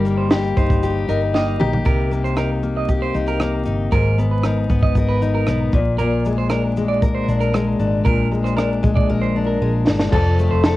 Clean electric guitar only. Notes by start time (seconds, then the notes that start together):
0.17 C5
0.57 C5
1.09 A#4
1.34 D#5
1.86 A#4
2.24 C5
2.37 A#4
2.77 D#5
3.02 C5
3.28 A#4
3.92 A#4
4.31 B4
4.44 A#4
4.83 D#5
5.09 B4
5.35 A#4
5.98 A#4
6.38 C5
6.50 A#4
6.88 D5
7.15 C5
7.40 A#4
8.05 A#4
8.44 C5
8.57 A#4
8.95 D5
9.22 C5
9.47 A#4
10.12 A4
10.51 C5